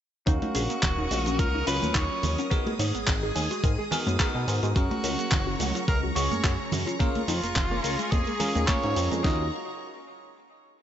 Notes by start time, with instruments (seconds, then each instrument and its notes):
0.26 analog synth bass D#2, synth arpeggio sound C#3, tine electric piano C#4 F#4 A#4 F5, clean electric guitar D#4, tenor saxophone F#4, string machine A#4 C#6 D#6, kick, closed hi-hat, shaker
0.42 synth arpeggio sound F#3, clean electric guitar D#4, closed hi-hat, high conga
0.55 analog synth bass A#1, synth arpeggio sound C#3, clean electric guitar G#4, open hi-hat, shaker
0.70 synth arpeggio sound A#3, closed hi-hat, shaker
0.83 analog synth bass D#1, synth arpeggio sound C#3, kick, clap, closed hi-hat, low conga, shaker
0.98 synth arpeggio sound C#4, clean electric guitar D#4
1.11 analog synth bass A#1, synth arpeggio sound C#3, clean electric guitar D#5, open hi-hat, high conga, shaker
1.26 synth arpeggio sound F#3, clean electric guitar C#4, closed hi-hat, shaker
1.39 analog synth bass C#2, synth arpeggio sound C#3, clean electric guitar F4, tenor saxophone A#4, kick, closed hi-hat, shaker
1.54 synth arpeggio sound F#3, clean electric guitar D#4
1.66 analog synth bass C#2, synth arpeggio sound C#3, tine electric piano F#3 C#4 F4 C#5, tenor saxophone B4, clean electric guitar D#5, open hi-hat, shaker
1.82 analog synth bass D#2, clean electric guitar D#3, synth arpeggio sound A#3, closed hi-hat, high conga, shaker
1.95 analog synth bass D#2, synth arpeggio sound C#3, clean electric guitar D#4, tenor saxophone C#5, kick, clap, closed hi-hat, shaker
2.11 synth arpeggio sound C#4
2.23 analog synth bass D#2, synth arpeggio sound C#3, open hi-hat, low conga, shaker
2.38 synth arpeggio sound F#3, clean electric guitar C#4, closed hi-hat, shaker
2.50 synth arpeggio sound D#3, tine electric piano B3 D#4 F#4 A#4, clean electric guitar G#4, string machine G#4, kick, closed hi-hat, shaker
2.66 synth arpeggio sound G#3, clean electric guitar G#4, closed hi-hat, high conga
2.79 analog synth bass G#2, synth arpeggio sound D#3, clean electric guitar C#5, open hi-hat, shaker
2.95 analog synth bass G#1, synth arpeggio sound B3, closed hi-hat, shaker
3.07 analog synth bass G#1, synth arpeggio sound D#3, kick, clap, closed hi-hat, low conga, shaker
3.23 synth arpeggio sound D#4, clean electric guitar G#4
3.35 analog synth bass D#2, synth arpeggio sound D#3, clean electric guitar G#5, open hi-hat, high conga, shaker
3.51 synth arpeggio sound G#3, clean electric guitar F#4, closed hi-hat, shaker
3.64 analog synth bass G#2, synth arpeggio sound D#3, clean electric guitar A#4, kick, closed hi-hat, shaker
3.78 synth arpeggio sound G#3, clean electric guitar G#4
3.91 synth arpeggio sound D#3, tine electric piano B3 D#4 F#4 A#4, clean electric guitar G#5, open hi-hat, low conga, shaker
4.07 analog synth bass F#2, clean electric guitar G#3, synth arpeggio sound B3, closed hi-hat, high conga, shaker
4.19 synth arpeggio sound D#3, tine electric piano B3 D#4 F#4 A#4, clean electric guitar G#4, kick, clap, closed hi-hat, shaker
4.35 analog synth bass B2, synth arpeggio sound D#4
4.48 analog synth bass G#2, synth arpeggio sound D#3, open hi-hat, shaker
4.63 analog synth bass G#2, synth arpeggio sound G#3, clean electric guitar F#4, closed hi-hat, shaker
4.75 analog synth bass F#2, synth arpeggio sound C#3, string machine F#3 A#5 C#6, tine electric piano C#4 G#4 A#4, clean electric guitar F#4, tenor saxophone F#4, kick, closed hi-hat, shaker
4.91 synth arpeggio sound F#3, clean electric guitar F#4, closed hi-hat, high conga
5.04 analog synth bass C#2, synth arpeggio sound C#3, clean electric guitar A#4, open hi-hat, shaker
5.19 synth arpeggio sound A#3, closed hi-hat, shaker
5.31 analog synth bass F#1, synth arpeggio sound C#3, kick, clap, closed hi-hat, low conga, shaker
5.47 synth arpeggio sound C#4, clean electric guitar F#4
5.60 analog synth bass C#2, synth arpeggio sound C#3, clean electric guitar F#5, open hi-hat, high conga, shaker
5.75 synth arpeggio sound F#3, clean electric guitar F4, closed hi-hat, shaker
5.88 analog synth bass C#2, synth arpeggio sound C#3, clean electric guitar G#4, tenor saxophone A#4, kick, closed hi-hat, shaker
6.03 synth arpeggio sound F#3, clean electric guitar F#4
6.15 analog synth bass C#2, synth arpeggio sound C#3, tine electric piano C#4 G#4 C#5, tenor saxophone C#5, clean electric guitar F#5, open hi-hat, shaker
6.31 clean electric guitar F#3, synth arpeggio sound A#3, closed hi-hat, high conga, shaker
6.44 analog synth bass F#2, synth arpeggio sound C#3, clean electric guitar F#4, kick, clap, closed hi-hat, shaker
6.60 synth arpeggio sound C#4
6.72 analog synth bass F#2, synth arpeggio sound C#3, open hi-hat, low conga, shaker
6.87 synth arpeggio sound F#3, clean electric guitar F4, closed hi-hat, shaker
6.99 synth arpeggio sound C#3, clean electric guitar A#3, tine electric piano C#4 F4 G#4 A#4, tenor saxophone F4, string machine G#4 C#6, kick, closed hi-hat, shaker
7.15 synth arpeggio sound G#3, clean electric guitar A#3, closed hi-hat, high conga
7.28 analog synth bass F2, synth arpeggio sound C#3, clean electric guitar D#4, open hi-hat, shaker
7.43 analog synth bass F1, synth arpeggio sound A#3, closed hi-hat, shaker
7.56 analog synth bass F1, kick, clap, closed hi-hat, low conga, shaker
7.71 clean electric guitar A#3, synth arpeggio sound C#4
7.84 analog synth bass C#2, synth arpeggio sound C#3, clean electric guitar A#4, open hi-hat, high conga, shaker
7.99 clean electric guitar G#3, synth arpeggio sound G#3, closed hi-hat, shaker
8.11 analog synth bass F2, synth arpeggio sound C#3, clean electric guitar A#3, tenor saxophone G#4, kick, closed hi-hat, shaker
8.27 synth arpeggio sound G#3, clean electric guitar A#3, closed hi-hat
8.40 synth arpeggio sound G#3, tine electric piano C#4 F4 G#4 A#4, clean electric guitar A#4, open hi-hat, low conga, shaker
8.55 analog synth bass D#2, clean electric guitar A#2, synth arpeggio sound A#3, closed hi-hat, high conga, shaker
8.67 clean electric guitar A#3, tine electric piano C#4 F4 G#4 A#4, synth arpeggio sound F4, tenor saxophone C#5, kick, clap, closed hi-hat, shaker
8.83 analog synth bass G#2, synth arpeggio sound C#4, closed hi-hat
8.96 analog synth bass F2, synth arpeggio sound A#3, open hi-hat, shaker
9.11 analog synth bass F2, clean electric guitar G#3, synth arpeggio sound A#3, closed hi-hat, shaker
9.23 analog synth bass D#2, synth arpeggio sound C#3, tine electric piano C#4 F4 F#4 A#4, clean electric guitar D#4, string machine F#4 D#5 A#5 C#6, tenor saxophone D#5, kick, snare